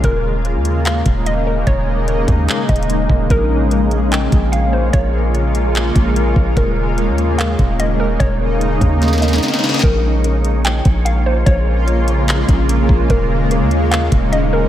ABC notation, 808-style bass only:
X:1
M:4/4
L:1/16
Q:1/4=147
K:Bbm
V:1 name="808-style bass" clef=bass
E,,,4- E,,, E,,4- E,, E,,,6 | E,,,6 E,,2 z2 E,,,4 E,,,2 | B,,,8- B,,,2 B,,,6 | B,,,8- B,,,2 B,,,4 B,,,2 |
E,,,4- E,,, E,,4- E,, E,,,6 | E,,,6 E,,6 z4 | B,,,8- B,,,2 B,,,6 | B,,,8- B,,,2 B,,,4 B,,,2 |
E,,,4- E,,, E,,4- E,, E,,,6 |]